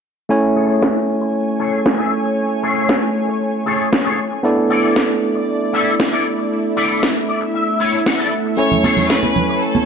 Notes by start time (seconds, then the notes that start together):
0.29 A3 C#4 E4 C#5 G#5
0.56 G#4 A4 C#5
0.83 snare
1.20 muted clean electric guitar stroke
1.33 muted clean electric guitar stroke
1.59 G#4 A4 C#5
1.86 snare
1.98 G#4 A4 E5
2.24 muted clean electric guitar stroke
2.63 G#4 A4 C#5
2.89 snare
3.27 muted clean electric guitar stroke
3.40 muted clean electric guitar stroke
3.66 G#4 A4 C#5
3.93 snare
4.05 G#4 A4 C#5
4.31 muted clean electric guitar stroke
4.43 A3 B3 D4 E4 A4 D5
4.70 E4 A4 D5
4.96 snare
5.34 muted clean electric guitar stroke
5.47 muted clean electric guitar stroke
5.73 E4 A4 E5
6.00 snare
6.12 E4 A4 D5
6.38 muted clean electric guitar stroke
6.51 E5
6.76 E4 A4 D5
7.03 snare
7.29 D5
7.41 muted clean electric guitar stroke
7.54 E5, muted clean electric guitar stroke
7.80 E4 A4 C#5
8.06 F#5, snare
8.19 E4 A4 D5
8.45 muted clean electric guitar stroke
8.57 A3 C#4 E4 C#5 G#5, cabasa
8.71 low conga, cabasa
8.83 G#4 A4 C#5, high conga, cabasa
8.97 low conga, cabasa
9.10 B4, snare, cabasa
9.23 high conga, cabasa
9.35 low conga, cabasa
9.48 muted clean electric guitar stroke, cabasa
9.61 A4, muted clean electric guitar stroke, cabasa
9.75 high conga, cabasa